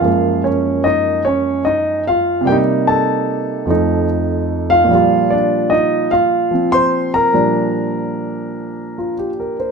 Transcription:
0, 0, Header, 1, 2, 480
1, 0, Start_track
1, 0, Key_signature, -2, "major"
1, 0, Tempo, 609137
1, 29, Time_signature, 4, 2, 24, 8
1, 7656, End_track
2, 0, Start_track
2, 0, Title_t, "Grand piano"
2, 0, Program_c, 0, 0
2, 0, Note_on_c, 0, 65, 57
2, 0, Note_on_c, 0, 77, 73
2, 6, Note_on_c, 0, 42, 46
2, 13, Note_on_c, 0, 53, 42
2, 30, Note_on_c, 0, 56, 42
2, 41, Note_on_c, 0, 58, 50
2, 324, Note_off_c, 0, 65, 0
2, 348, Note_on_c, 0, 73, 60
2, 354, Note_on_c, 0, 61, 50
2, 366, Note_off_c, 0, 77, 0
2, 648, Note_off_c, 0, 61, 0
2, 662, Note_on_c, 0, 75, 70
2, 676, Note_off_c, 0, 73, 0
2, 678, Note_on_c, 0, 63, 52
2, 961, Note_off_c, 0, 75, 0
2, 969, Note_off_c, 0, 63, 0
2, 983, Note_on_c, 0, 73, 69
2, 1002, Note_on_c, 0, 61, 56
2, 1281, Note_off_c, 0, 73, 0
2, 1291, Note_off_c, 0, 61, 0
2, 1298, Note_on_c, 0, 75, 65
2, 1313, Note_on_c, 0, 63, 54
2, 1598, Note_off_c, 0, 75, 0
2, 1606, Note_off_c, 0, 63, 0
2, 1635, Note_on_c, 0, 77, 73
2, 1647, Note_on_c, 0, 65, 55
2, 1899, Note_on_c, 0, 48, 56
2, 1927, Note_off_c, 0, 77, 0
2, 1932, Note_off_c, 0, 42, 0
2, 1932, Note_on_c, 0, 55, 50
2, 1933, Note_off_c, 0, 65, 0
2, 1935, Note_off_c, 0, 53, 0
2, 1944, Note_off_c, 0, 56, 0
2, 1947, Note_off_c, 0, 58, 0
2, 1947, Note_on_c, 0, 79, 74
2, 1959, Note_on_c, 0, 58, 47
2, 1964, Note_on_c, 0, 67, 61
2, 1988, Note_on_c, 0, 63, 59
2, 2018, Note_off_c, 0, 79, 0
2, 2033, Note_off_c, 0, 67, 0
2, 2265, Note_on_c, 0, 81, 68
2, 2279, Note_on_c, 0, 69, 54
2, 2879, Note_on_c, 0, 41, 49
2, 2880, Note_off_c, 0, 48, 0
2, 2893, Note_on_c, 0, 53, 44
2, 2897, Note_off_c, 0, 55, 0
2, 2907, Note_off_c, 0, 63, 0
2, 2910, Note_off_c, 0, 58, 0
2, 2913, Note_on_c, 0, 57, 41
2, 2919, Note_on_c, 0, 63, 54
2, 3192, Note_off_c, 0, 81, 0
2, 3199, Note_off_c, 0, 69, 0
2, 3703, Note_on_c, 0, 77, 89
2, 3720, Note_on_c, 0, 65, 55
2, 3814, Note_on_c, 0, 46, 54
2, 3832, Note_off_c, 0, 53, 0
2, 3844, Note_on_c, 0, 53, 50
2, 3851, Note_off_c, 0, 41, 0
2, 3868, Note_off_c, 0, 57, 0
2, 3871, Note_off_c, 0, 63, 0
2, 3871, Note_on_c, 0, 55, 50
2, 3888, Note_off_c, 0, 65, 0
2, 3899, Note_on_c, 0, 65, 60
2, 4179, Note_on_c, 0, 74, 66
2, 4197, Note_off_c, 0, 77, 0
2, 4198, Note_on_c, 0, 62, 52
2, 4489, Note_off_c, 0, 62, 0
2, 4490, Note_on_c, 0, 75, 71
2, 4509, Note_on_c, 0, 63, 54
2, 4511, Note_off_c, 0, 74, 0
2, 4805, Note_off_c, 0, 63, 0
2, 4815, Note_on_c, 0, 77, 76
2, 4819, Note_off_c, 0, 65, 0
2, 4827, Note_off_c, 0, 75, 0
2, 4831, Note_on_c, 0, 65, 60
2, 5118, Note_off_c, 0, 53, 0
2, 5130, Note_on_c, 0, 53, 39
2, 5153, Note_on_c, 0, 60, 42
2, 5277, Note_off_c, 0, 65, 0
2, 5296, Note_on_c, 0, 84, 91
2, 5312, Note_on_c, 0, 72, 71
2, 5315, Note_off_c, 0, 77, 0
2, 5599, Note_off_c, 0, 84, 0
2, 5607, Note_off_c, 0, 72, 0
2, 5626, Note_on_c, 0, 82, 80
2, 5639, Note_on_c, 0, 70, 60
2, 5761, Note_off_c, 0, 46, 0
2, 5768, Note_off_c, 0, 55, 0
2, 5772, Note_off_c, 0, 53, 0
2, 5776, Note_on_c, 0, 46, 46
2, 5780, Note_on_c, 0, 55, 41
2, 5784, Note_on_c, 0, 53, 41
2, 5785, Note_on_c, 0, 62, 53
2, 5790, Note_off_c, 0, 60, 0
2, 7078, Note_on_c, 0, 65, 39
2, 7198, Note_off_c, 0, 82, 0
2, 7204, Note_off_c, 0, 70, 0
2, 7240, Note_on_c, 0, 67, 39
2, 7322, Note_off_c, 0, 65, 0
2, 7405, Note_on_c, 0, 70, 42
2, 7534, Note_off_c, 0, 67, 0
2, 7562, Note_on_c, 0, 72, 44
2, 7646, Note_off_c, 0, 70, 0
2, 7656, Note_off_c, 0, 46, 0
2, 7656, Note_off_c, 0, 53, 0
2, 7656, Note_off_c, 0, 55, 0
2, 7656, Note_off_c, 0, 62, 0
2, 7656, Note_off_c, 0, 72, 0
2, 7656, End_track
0, 0, End_of_file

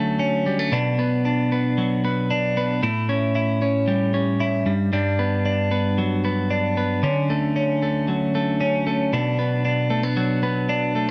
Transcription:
0, 0, Header, 1, 2, 480
1, 0, Start_track
1, 0, Key_signature, 2, "major"
1, 0, Tempo, 524934
1, 668, Time_signature, 4, 2, 24, 8
1, 10157, End_track
2, 0, Start_track
2, 0, Title_t, "Clean electric guitar"
2, 0, Program_c, 0, 27
2, 0, Note_on_c, 0, 50, 74
2, 0, Note_on_c, 0, 54, 56
2, 0, Note_on_c, 0, 57, 57
2, 0, Note_on_c, 0, 61, 52
2, 166, Note_off_c, 0, 61, 0
2, 177, Note_on_c, 0, 61, 59
2, 421, Note_off_c, 0, 57, 0
2, 424, Note_on_c, 0, 55, 56
2, 540, Note_off_c, 0, 55, 0
2, 540, Note_on_c, 0, 57, 44
2, 656, Note_off_c, 0, 50, 0
2, 659, Note_on_c, 0, 47, 76
2, 662, Note_off_c, 0, 61, 0
2, 666, Note_on_c, 0, 62, 61
2, 712, Note_off_c, 0, 57, 0
2, 903, Note_on_c, 0, 59, 55
2, 1134, Note_off_c, 0, 62, 0
2, 1145, Note_on_c, 0, 62, 59
2, 1379, Note_off_c, 0, 59, 0
2, 1390, Note_on_c, 0, 59, 54
2, 1623, Note_off_c, 0, 54, 0
2, 1627, Note_on_c, 0, 54, 58
2, 1859, Note_off_c, 0, 59, 0
2, 1870, Note_on_c, 0, 59, 57
2, 2097, Note_off_c, 0, 62, 0
2, 2108, Note_on_c, 0, 62, 62
2, 2340, Note_off_c, 0, 59, 0
2, 2351, Note_on_c, 0, 59, 55
2, 2584, Note_on_c, 0, 45, 73
2, 2586, Note_off_c, 0, 62, 0
2, 2587, Note_off_c, 0, 47, 0
2, 2590, Note_on_c, 0, 64, 66
2, 2638, Note_off_c, 0, 54, 0
2, 2639, Note_off_c, 0, 59, 0
2, 2827, Note_on_c, 0, 61, 56
2, 3055, Note_off_c, 0, 64, 0
2, 3066, Note_on_c, 0, 64, 65
2, 3298, Note_off_c, 0, 61, 0
2, 3309, Note_on_c, 0, 61, 54
2, 3545, Note_on_c, 0, 55, 55
2, 3774, Note_off_c, 0, 61, 0
2, 3785, Note_on_c, 0, 61, 53
2, 4016, Note_off_c, 0, 64, 0
2, 4027, Note_on_c, 0, 64, 64
2, 4258, Note_off_c, 0, 45, 0
2, 4262, Note_on_c, 0, 43, 72
2, 4317, Note_off_c, 0, 61, 0
2, 4318, Note_off_c, 0, 64, 0
2, 4494, Note_off_c, 0, 43, 0
2, 4505, Note_on_c, 0, 43, 79
2, 4510, Note_on_c, 0, 62, 64
2, 4745, Note_on_c, 0, 59, 56
2, 4985, Note_off_c, 0, 62, 0
2, 4989, Note_on_c, 0, 62, 60
2, 5213, Note_off_c, 0, 59, 0
2, 5224, Note_on_c, 0, 59, 58
2, 5466, Note_off_c, 0, 55, 0
2, 5470, Note_on_c, 0, 54, 53
2, 5701, Note_off_c, 0, 59, 0
2, 5712, Note_on_c, 0, 59, 58
2, 5944, Note_off_c, 0, 62, 0
2, 5948, Note_on_c, 0, 62, 58
2, 6182, Note_off_c, 0, 59, 0
2, 6193, Note_on_c, 0, 59, 48
2, 6428, Note_off_c, 0, 43, 0
2, 6428, Note_on_c, 0, 50, 75
2, 6431, Note_off_c, 0, 62, 0
2, 6435, Note_on_c, 0, 61, 63
2, 6480, Note_off_c, 0, 59, 0
2, 6674, Note_on_c, 0, 57, 56
2, 6902, Note_off_c, 0, 61, 0
2, 6913, Note_on_c, 0, 61, 62
2, 7144, Note_off_c, 0, 57, 0
2, 7155, Note_on_c, 0, 57, 51
2, 7386, Note_off_c, 0, 54, 0
2, 7390, Note_on_c, 0, 54, 53
2, 7624, Note_off_c, 0, 57, 0
2, 7635, Note_on_c, 0, 57, 54
2, 7858, Note_off_c, 0, 61, 0
2, 7869, Note_on_c, 0, 61, 62
2, 8097, Note_off_c, 0, 57, 0
2, 8108, Note_on_c, 0, 57, 53
2, 8345, Note_off_c, 0, 50, 0
2, 8349, Note_off_c, 0, 61, 0
2, 8349, Note_on_c, 0, 47, 76
2, 8353, Note_on_c, 0, 62, 67
2, 8397, Note_off_c, 0, 57, 0
2, 8584, Note_on_c, 0, 59, 55
2, 8813, Note_off_c, 0, 62, 0
2, 8824, Note_on_c, 0, 62, 61
2, 9052, Note_off_c, 0, 59, 0
2, 9055, Note_on_c, 0, 57, 58
2, 9174, Note_off_c, 0, 57, 0
2, 9174, Note_on_c, 0, 59, 52
2, 9295, Note_off_c, 0, 54, 0
2, 9298, Note_on_c, 0, 54, 53
2, 9526, Note_off_c, 0, 59, 0
2, 9537, Note_on_c, 0, 59, 59
2, 9766, Note_off_c, 0, 62, 0
2, 9777, Note_on_c, 0, 62, 63
2, 10014, Note_off_c, 0, 59, 0
2, 10018, Note_on_c, 0, 57, 54
2, 10139, Note_off_c, 0, 57, 0
2, 10157, Note_off_c, 0, 47, 0
2, 10157, Note_off_c, 0, 54, 0
2, 10157, Note_off_c, 0, 62, 0
2, 10157, End_track
0, 0, End_of_file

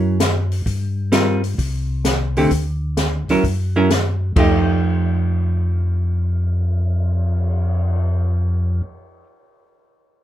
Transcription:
0, 0, Header, 1, 5, 480
1, 0, Start_track
1, 0, Tempo, 462250
1, 692, Time_signature, 4, 2, 24, 8
1, 10631, End_track
2, 0, Start_track
2, 0, Title_t, "Hollow-body jazz guitar"
2, 0, Program_c, 0, 26
2, 0, Note_on_c, 0, 54, 61
2, 0, Note_on_c, 0, 61, 60
2, 0, Note_on_c, 0, 64, 62
2, 0, Note_on_c, 0, 70, 65
2, 182, Note_off_c, 0, 54, 0
2, 184, Note_off_c, 0, 61, 0
2, 187, Note_off_c, 0, 70, 0
2, 188, Note_off_c, 0, 64, 0
2, 1162, Note_on_c, 0, 55, 63
2, 1167, Note_on_c, 0, 60, 59
2, 1172, Note_on_c, 0, 65, 62
2, 1176, Note_on_c, 0, 70, 60
2, 1461, Note_off_c, 0, 55, 0
2, 1463, Note_off_c, 0, 60, 0
2, 1466, Note_off_c, 0, 65, 0
2, 1468, Note_off_c, 0, 70, 0
2, 2460, Note_on_c, 0, 50, 51
2, 2464, Note_on_c, 0, 57, 53
2, 2469, Note_on_c, 0, 67, 64
2, 2472, Note_on_c, 0, 60, 57
2, 2597, Note_off_c, 0, 50, 0
2, 2599, Note_off_c, 0, 57, 0
2, 2601, Note_off_c, 0, 67, 0
2, 2602, Note_off_c, 0, 60, 0
2, 3426, Note_on_c, 0, 54, 59
2, 3432, Note_on_c, 0, 61, 57
2, 3435, Note_on_c, 0, 64, 59
2, 3439, Note_on_c, 0, 70, 66
2, 3560, Note_off_c, 0, 54, 0
2, 3562, Note_off_c, 0, 61, 0
2, 3564, Note_off_c, 0, 64, 0
2, 3566, Note_off_c, 0, 70, 0
2, 3904, Note_on_c, 0, 54, 59
2, 3907, Note_on_c, 0, 64, 62
2, 3908, Note_on_c, 0, 61, 66
2, 3914, Note_on_c, 0, 70, 69
2, 4039, Note_off_c, 0, 54, 0
2, 4040, Note_off_c, 0, 61, 0
2, 4040, Note_off_c, 0, 64, 0
2, 4044, Note_off_c, 0, 70, 0
2, 4531, Note_on_c, 0, 53, 61
2, 4544, Note_on_c, 0, 57, 67
2, 4552, Note_on_c, 0, 63, 60
2, 4565, Note_on_c, 0, 67, 61
2, 9586, Note_off_c, 0, 53, 0
2, 9598, Note_off_c, 0, 57, 0
2, 9606, Note_off_c, 0, 63, 0
2, 9619, Note_off_c, 0, 67, 0
2, 10631, End_track
3, 0, Start_track
3, 0, Title_t, "Tonewheel organ"
3, 0, Program_c, 1, 16
3, 0, Note_on_c, 1, 42, 83
3, 645, Note_off_c, 1, 42, 0
3, 684, Note_on_c, 1, 43, 71
3, 1606, Note_off_c, 1, 43, 0
3, 1642, Note_on_c, 1, 36, 87
3, 2565, Note_off_c, 1, 36, 0
3, 2601, Note_on_c, 1, 38, 80
3, 3371, Note_off_c, 1, 38, 0
3, 3410, Note_on_c, 1, 38, 38
3, 3488, Note_off_c, 1, 38, 0
3, 3570, Note_on_c, 1, 42, 76
3, 4489, Note_off_c, 1, 42, 0
3, 4526, Note_on_c, 1, 41, 77
3, 9158, Note_off_c, 1, 41, 0
3, 10631, End_track
4, 0, Start_track
4, 0, Title_t, "Cymbal swell"
4, 4864, Note_on_c, 9, 59, 43
4, 8283, Note_off_c, 9, 59, 0
4, 10631, End_track
5, 0, Start_track
5, 0, Title_t, "Drums"
5, 208, Note_on_c, 9, 38, 71
5, 208, Note_on_c, 9, 42, 58
5, 312, Note_off_c, 9, 38, 0
5, 312, Note_off_c, 9, 42, 0
5, 535, Note_on_c, 9, 46, 39
5, 639, Note_off_c, 9, 46, 0
5, 686, Note_on_c, 9, 36, 31
5, 691, Note_on_c, 9, 46, 45
5, 789, Note_off_c, 9, 36, 0
5, 795, Note_off_c, 9, 46, 0
5, 1166, Note_on_c, 9, 38, 68
5, 1166, Note_on_c, 9, 42, 53
5, 1270, Note_off_c, 9, 38, 0
5, 1270, Note_off_c, 9, 42, 0
5, 1491, Note_on_c, 9, 46, 37
5, 1595, Note_off_c, 9, 46, 0
5, 1646, Note_on_c, 9, 36, 33
5, 1647, Note_on_c, 9, 46, 46
5, 1750, Note_off_c, 9, 36, 0
5, 1751, Note_off_c, 9, 46, 0
5, 2125, Note_on_c, 9, 38, 66
5, 2125, Note_on_c, 9, 42, 55
5, 2229, Note_off_c, 9, 38, 0
5, 2229, Note_off_c, 9, 42, 0
5, 2455, Note_on_c, 9, 46, 38
5, 2559, Note_off_c, 9, 46, 0
5, 2603, Note_on_c, 9, 46, 45
5, 2606, Note_on_c, 9, 36, 31
5, 2706, Note_off_c, 9, 46, 0
5, 2710, Note_off_c, 9, 36, 0
5, 3085, Note_on_c, 9, 38, 63
5, 3085, Note_on_c, 9, 42, 51
5, 3189, Note_off_c, 9, 38, 0
5, 3189, Note_off_c, 9, 42, 0
5, 3416, Note_on_c, 9, 46, 34
5, 3519, Note_off_c, 9, 46, 0
5, 3571, Note_on_c, 9, 36, 35
5, 3575, Note_on_c, 9, 46, 47
5, 3675, Note_off_c, 9, 36, 0
5, 3679, Note_off_c, 9, 46, 0
5, 4053, Note_on_c, 9, 38, 67
5, 4053, Note_on_c, 9, 42, 51
5, 4157, Note_off_c, 9, 38, 0
5, 4157, Note_off_c, 9, 42, 0
5, 4530, Note_on_c, 9, 36, 58
5, 4531, Note_on_c, 9, 49, 56
5, 4634, Note_off_c, 9, 36, 0
5, 4634, Note_off_c, 9, 49, 0
5, 10631, End_track
0, 0, End_of_file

